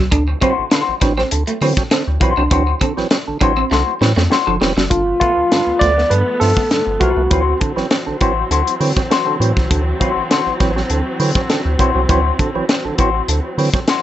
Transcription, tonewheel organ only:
0.12 0.24 D3 medium
0.41 0.53 F#3 medium
0.41 0.53 C4 medium
0.72 0.83 D3 medium
1.02 1.13 E3 medium
1.02 1.13 F#3 medium
1.02 1.13 C4 medium
1.18 1.23 F#3 soft
1.18 1.23 C4 medium
1.32 1.43 D3 medium
1.62 1.73 E3 medium
1.62 1.73 F#3 medium
1.62 1.74 C4 medium
1.78 1.83 F#3 soft
1.78 1.83 C4 soft
1.92 2.03 D3 medium
2.22 2.33 E3 medium
2.22 2.33 F#3 medium
2.22 2.34 C4 medium
2.38 2.43 F#3 soft
2.38 2.43 C4 soft
2.51 2.63 E3 medium
2.51 2.63 F#3 medium
2.51 2.63 C4 loud
2.82 2.93 D3 medium
2.97 3.08 E3 medium
2.97 3.08 F#3 medium
2.97 3.08 C4 medium
3.12 3.18 F#3 soft
3.12 3.18 C4 soft
3.28 3.38 D3 medium
3.41 3.53 E3 medium
3.41 3.53 F#3 medium
3.41 3.53 C4 medium
3.72 3.83 D3 medium
4.01 4.13 E3 medium
4.01 4.13 F#3 medium
4.01 4.13 C4 medium
4.17 4.23 F#3 soft
4.17 4.23 C4 soft
4.31 4.38 F#3 soft
4.31 4.38 C4 soft
4.47 4.57 D3 medium
4.61 4.73 E3 medium
4.61 4.73 F#3 medium
4.61 4.73 C4 medium
4.91 5.03 G2 soft
4.91 5.03 D3 medium
5.21 5.33 A3 medium
5.21 5.33 B3 medium
5.51 5.63 G2 medium
5.51 5.63 D3 medium
5.81 5.92 F3 medium
5.81 5.93 A3 medium
5.81 5.93 B3 medium
5.97 6.03 A3 soft
5.97 6.03 B3 soft
6.11 6.23 G2 medium
6.11 6.23 D3 medium
6.41 6.53 F3 medium
6.41 6.53 A3 medium
6.41 6.53 B3 medium
6.57 6.63 A3 soft
6.57 6.63 B3 soft
6.71 6.83 G2 medium
6.71 6.83 D3 medium
7.00 7.12 F3 medium
7.00 7.13 A3 medium
7.00 7.13 B3 medium
7.16 7.22 A3 soft
7.16 7.22 B3 soft
7.30 7.42 E3 medium
7.30 7.42 F#3 medium
7.30 7.43 C4 medium
7.60 7.72 D3 medium
7.76 7.87 E3 medium
7.76 7.87 F#3 medium
7.76 7.87 C4 medium
7.91 7.97 F#3 soft
7.91 7.97 C4 soft
8.07 8.17 D3 medium
8.21 8.33 E3 medium
8.21 8.33 F#3 medium
8.21 8.33 C4 medium
8.51 8.63 D3 medium
8.80 8.92 E3 medium
8.80 8.92 F#3 medium
8.80 8.93 C4 medium
8.97 9.03 F#3 soft
8.97 9.02 C4 soft
9.10 9.17 F#3 soft
9.10 9.17 C4 soft
9.27 9.37 D3 medium
9.40 9.52 E3 medium
9.40 9.52 F#3 medium
9.40 9.52 C4 medium
9.71 9.82 D3 medium
10.00 10.12 F#3 medium
10.00 10.12 C4 medium
10.31 10.42 D3 medium
10.60 10.72 E3 medium
10.60 10.72 F#3 medium
10.60 10.72 C4 medium
10.76 10.82 F#3 soft
10.76 10.82 C4 soft
10.90 11.02 D3 medium
11.20 11.31 E3 medium
11.20 11.31 F#3 medium
11.20 11.32 C4 medium
11.36 11.42 F#3 soft
11.36 11.42 C4 soft
11.50 11.61 D3 medium
11.79 11.91 E3 medium
11.79 11.91 F#3 medium
11.79 11.91 C4 medium
11.95 12.01 F#3 soft
11.95 12.01 C4 soft
12.09 12.21 E3 medium
12.09 12.21 F#3 medium
12.09 12.21 C4 loud
12.39 12.51 D3 medium
12.55 12.65 E3 medium
12.55 12.65 F#3 medium
12.55 12.65 C4 medium
12.70 12.76 F#3 soft
12.70 12.76 C4 soft
12.85 12.95 D3 medium
12.98 13.10 E3 medium
12.98 13.10 F#3 medium
12.98 13.10 C4 medium
13.29 13.40 D3 medium
13.58 13.70 E3 medium
13.58 13.70 F#3 medium
13.58 13.70 C4 medium
13.75 13.80 F#3 soft
13.75 13.80 C4 soft

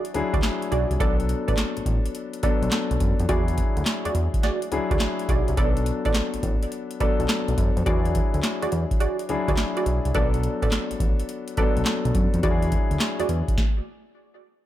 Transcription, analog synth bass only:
0.15 0.22 D2 soft
0.34 0.40 D2 medium
0.72 0.85 B1 medium
0.91 0.97 C2 medium
1.00 1.34 B1 loud
1.48 1.55 A1 medium
1.77 1.80 A1 soft
1.86 1.99 A1 medium
2.43 2.51 B1 soft
2.62 2.69 B1 medium
2.91 2.98 B1 medium
3.00 3.14 F#2 medium
3.19 3.26 F2 medium
3.29 3.63 E2 loud
3.77 3.83 D2 medium
4.05 4.09 E2 soft
4.15 4.28 E2 medium
4.72 4.79 D2 soft
4.91 4.98 D2 medium
5.29 5.42 B1 medium
5.48 5.55 C2 medium
5.58 5.91 B1 loud
6.05 6.12 A1 medium
6.34 6.38 A1 soft
6.43 6.57 A1 medium
7.01 7.08 B1 soft
7.20 7.26 B1 medium
7.48 7.55 B1 medium
7.58 7.71 F#2 medium
7.77 7.83 F2 medium
7.86 8.20 E2 loud
8.34 8.41 D2 medium
8.63 8.66 E2 soft
8.72 8.85 E2 medium
9.29 9.37 D2 medium
9.48 9.55 D2 medium
9.86 10.00 B1 medium
10.05 10.12 C2 medium
10.15 10.48 B1 loud
10.63 10.69 A1 loud
10.91 10.95 A1 soft
11.00 11.14 A1 medium
11.58 11.65 B1 soft
11.77 11.83 B1 medium
12.05 12.12 B1 medium
12.14 12.28 F#2 medium
12.34 12.41 F2 medium
12.43 12.77 E2 loud
12.91 12.98 D2 medium
13.20 13.23 E2 soft
13.29 13.43 E2 medium

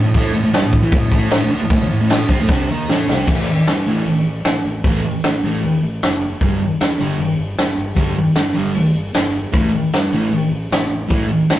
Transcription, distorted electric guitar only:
0.05 0.14 A2 medium
0.16 0.32 A2 medium
0.16 0.34 A3 loud
0.33 0.42 A2 medium
0.43 0.53 A2 medium
0.53 0.62 G2 medium
0.53 0.63 G3 loud
0.64 0.79 A2 medium
0.83 0.92 E3 medium
0.83 0.93 E4 loud
0.93 1.02 A2 medium
1.03 1.11 A2 medium
1.12 1.30 A2 medium
1.12 1.32 A3 loud
1.31 1.40 A2 medium
1.42 1.51 A2 medium
1.51 1.61 D3 medium
1.51 1.61 D4 loud
1.61 1.69 A2 medium
1.71 1.81 A2 medium
1.83 muted distorted electric guitar stroke medium
1.92 2.00 A2 medium
2.01 2.16 A2 medium
2.29 2.39 C3 medium
2.29 2.39 C4 loud
2.40 2.49 A2 medium
2.40 2.49 A3 medium
2.50 2.69 C3 medium
2.50 2.69 C4 loud
2.71 2.89 D#3 medium
2.71 2.89 D#4 medium
2.90 3.08 A2 medium
2.90 3.08 A3 loud
3.09 3.28 C3 medium
3.09 3.28 C4 loud
3.29 3.44 A2 medium
3.29 3.44 E3 medium
3.29 3.45 A3 medium
3.87 4.02 A2 loud
3.87 4.03 E3 medium
3.87 4.03 A3 medium
4.85 5.00 A2 medium
4.85 5.01 E3 medium
4.85 5.01 A3 medium
5.45 5.60 A2 medium
5.45 5.60 E3 loud
5.45 5.60 A3 loud
6.42 6.57 G2 medium
6.42 6.57 D3 medium
6.42 6.58 G3 medium
6.99 7.15 G2 medium
6.99 7.16 D3 loud
6.99 7.16 G3 medium
7.95 8.12 G2 medium
7.95 8.13 D3 loud
7.95 8.13 G3 medium
8.54 8.71 G2 medium
8.54 8.71 D3 loud
8.54 8.71 G3 loud
9.53 9.69 A2 medium
9.53 9.69 E3 medium
9.53 9.70 A3 medium
10.13 10.29 A2 medium
10.13 10.29 E3 loud
10.13 10.29 A3 medium
11.08 11.25 A2 medium
11.08 11.26 E3 medium
11.08 11.26 A3 loud

